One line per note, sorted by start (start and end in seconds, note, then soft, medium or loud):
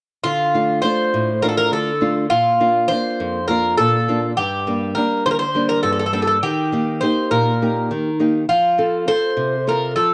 0.24 0.81 D3 medium
0.24 0.79 F4 medium
0.54 0.83 A3 soft
0.54 0.83 D4 soft
0.54 0.83 F4 soft
0.82 1.31 A3 soft
0.82 1.31 D4 soft
0.82 1.31 F4 soft
0.82 1.42 C5 medium
1.14 1.70 A2 medium
1.42 1.90 A3 soft
1.42 1.90 D4 soft
1.42 1.90 F4 soft
1.42 1.48 A#4 medium
1.49 1.56 A4 medium
1.57 1.71 A#4 medium
1.72 2.29 D3 medium
1.72 2.14 A4 medium
2.01 2.25 A3 soft
2.01 2.25 D4 soft
2.01 2.25 F4 medium
2.30 2.88 A#2 medium
2.30 2.91 F4 medium
2.60 2.90 A#3 soft
2.60 2.89 D4 soft
2.60 2.90 F4 soft
2.88 3.37 A#3 soft
2.88 3.37 D4 soft
2.88 3.38 F4 soft
2.88 3.47 C5 medium
3.20 3.77 F2 medium
3.48 3.96 A#3 soft
3.48 3.96 D4 soft
3.48 3.97 F4 soft
3.48 3.77 A#4 medium
3.77 4.36 A#2 medium
3.77 4.19 A4 medium
4.08 4.32 A#3 soft
4.08 4.32 D4 soft
4.08 4.32 F4 soft
4.37 4.95 G2 medium
4.37 4.98 G4 medium
4.67 4.95 G3 soft
4.67 4.95 A#3 soft
4.67 4.96 D4 soft
4.95 5.43 G3 soft
4.95 5.44 A#3 soft
4.95 5.44 D4 soft
4.95 5.23 A#4 medium
5.26 5.83 D3 medium
5.26 5.30 C5 medium
5.31 5.39 A#4 medium
5.39 5.69 C5 medium
5.55 6.02 G3 soft
5.55 6.02 A#3 soft
5.55 6.03 D4 soft
5.69 5.82 A#4 medium
5.83 6.41 G2 medium
5.83 5.91 A4 medium
5.92 5.98 A4 medium
5.99 6.05 A4 medium
6.06 6.12 A4 medium
6.13 6.37 G3 soft
6.13 6.37 A#3 soft
6.13 6.37 D4 soft
6.13 6.21 A4 medium
6.22 6.26 A4 medium
6.27 6.36 A4 medium
6.43 7.01 D#3 medium
6.43 7.04 G4 medium
6.72 7.01 A#3 soft
6.72 7.01 D#4 soft
6.72 7.02 G4 soft
7.01 7.50 A#3 soft
7.01 7.50 D#4 soft
7.01 7.50 G4 soft
7.01 7.31 C5 medium
7.31 7.89 A#2 medium
7.31 8.16 A#4 medium
7.62 8.09 A#3 soft
7.62 8.09 D#4 soft
7.62 8.09 G4 soft
7.91 8.48 D#3 medium
8.20 8.44 A#3 soft
8.20 8.44 D#4 soft
8.20 8.44 G4 soft
8.49 9.07 F3 medium
8.49 9.10 F4 medium
8.78 9.06 C4 soft
8.78 9.07 F4 soft
8.78 9.07 A4 soft
9.07 9.55 C4 soft
9.07 9.56 F4 soft
9.07 9.56 A4 soft
9.07 9.63 C5 medium
9.37 9.95 C3 medium
9.67 10.14 C4 soft
9.67 10.14 F4 soft
9.67 10.14 A4 soft
9.67 9.95 A#4 medium
9.96 10.14 F3 medium
9.96 10.14 A4 medium